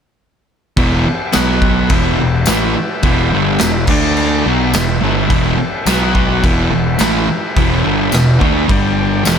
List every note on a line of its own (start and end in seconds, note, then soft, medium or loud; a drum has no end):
0.77 1.04 E1 loud
0.77 1.05 E2 loud
0.77 1.05 B2 loud
0.77 1.06 E3 loud
0.77 1.35 G4 medium
0.77 1.33 B4 medium
0.77 1.35 E5 medium
0.77 kick loud
0.77 crash medium
1.06 muted distorted electric guitar stroke medium
1.06 muted picked electric bass stroke soft
1.32 1.88 B1 medium
1.32 1.89 B2 medium
1.32 1.90 F#3 loud
1.32 1.90 B3 medium
1.32 1.91 F#4 medium
1.32 1.90 B4 medium
1.32 1.91 F#5 medium
1.32 snare loud
1.32 tambourine loud
1.32 crash medium
1.62 kick medium
1.89 2.17 E1 medium
1.89 2.18 E2 loud
1.89 2.18 B2 loud
1.89 2.19 E3 loud
1.89 3.85 G4 medium
1.89 3.85 B4 medium
1.89 3.85 E5 medium
1.89 kick loud
1.89 crash medium
2.19 2.47 E1 medium
2.19 2.42 E2 medium
2.19 2.42 B2 medium
2.46 2.74 A1 loud
2.46 2.75 A2 loud
2.46 2.75 E3 loud
2.46 2.75 A3 loud
2.46 snare loud
2.46 tambourine loud
2.46 crash medium
2.76 muted picked electric bass stroke soft
2.76 muted distorted electric guitar stroke medium
3.03 3.30 E1 loud
3.03 3.31 E2 medium
3.03 3.31 B2 loud
3.03 3.32 E3 loud
3.03 kick loud
3.03 crash medium
3.32 3.59 G1 loud
3.32 3.59 G2 loud
3.32 3.60 D3 loud
3.32 3.61 G3 loud
3.59 3.87 E1 medium
3.59 3.83 E2 medium
3.59 3.83 B2 medium
3.59 snare loud
3.59 tambourine loud
3.59 crash medium
3.87 4.41 D2 loud
3.87 4.44 D3 loud
3.87 4.45 A3 loud
3.87 4.46 D4 medium
3.87 4.45 D4 loud
3.87 4.46 A4 medium
3.87 4.46 D5 medium
3.87 kick loud
3.87 crash loud
4.17 crash medium
4.45 4.72 B1 medium
4.45 4.73 B2 loud
4.45 4.73 F#3 loud
4.45 4.74 B3 loud
4.45 5.86 G4 medium
4.50 5.86 B4 medium
4.50 5.86 E5 medium
4.74 5.00 E1 medium
4.74 4.97 E2 medium
4.74 4.97 B2 medium
4.74 snare loud
4.74 tambourine loud
4.74 crash medium
5.01 5.28 G1 medium
5.01 5.28 G2 medium
5.01 5.29 D3 loud
5.01 5.30 G3 loud
5.29 5.57 E1 loud
5.29 5.57 E2 medium
5.29 5.58 B2 loud
5.29 5.58 E3 loud
5.29 kick loud
5.29 crash medium
5.58 muted distorted electric guitar stroke medium
5.58 muted picked electric bass stroke soft
5.86 6.39 B1 loud
5.86 6.42 B2 medium
5.86 6.42 F#3 loud
5.86 6.43 B3 loud
5.86 6.44 F#4 medium
5.86 6.45 F#5 medium
5.86 snare loud
5.86 tambourine loud
5.86 crash medium
5.90 6.41 B4 medium
6.15 kick medium
6.41 6.70 E1 loud
6.41 6.69 E2 medium
6.41 6.69 B2 loud
6.41 6.71 E3 loud
6.41 8.64 G4 medium
6.41 8.65 B4 medium
6.41 8.64 E5 medium
6.41 kick loud
6.41 crash medium
6.70 6.98 E1 medium
6.70 6.94 E2 medium
6.70 6.94 B2 medium
6.98 7.27 A1 loud
6.98 7.26 A2 loud
6.98 7.27 E3 loud
6.98 7.27 A3 loud
6.98 snare loud
6.98 tambourine loud
6.98 crash medium
7.28 muted distorted electric guitar stroke medium
7.28 muted picked electric bass stroke soft
7.57 7.83 E1 loud
7.57 7.83 E2 loud
7.57 7.84 B2 medium
7.57 7.85 E3 loud
7.57 kick loud
7.57 crash medium
7.83 8.11 G1 medium
7.83 8.11 G2 medium
7.83 8.12 D3 loud
7.83 8.12 G3 loud
8.12 8.39 E1 medium
8.12 8.36 E2 medium
8.12 8.36 B2 medium
8.12 snare loud
8.12 tambourine loud
8.12 crash medium
8.39 8.67 D2 loud
8.39 8.66 D3 loud
8.39 8.68 A3 loud
8.39 8.69 D4 loud
8.39 kick medium
8.66 9.22 G1 medium
8.66 9.23 G2 loud
8.66 9.24 D3 loud
8.66 9.25 G3 loud
8.66 9.26 G4 medium
8.66 kick loud
8.66 crash medium
8.71 9.27 D5 medium
8.71 9.24 G5 medium
9.23 9.39 E1 medium
9.23 9.39 E2 loud
9.23 9.39 B2 loud
9.23 9.39 E3 loud
9.23 9.39 B4 medium
9.23 9.39 E5 medium
9.23 9.39 G5 medium
9.23 tambourine loud
9.23 crash medium
9.27 snare loud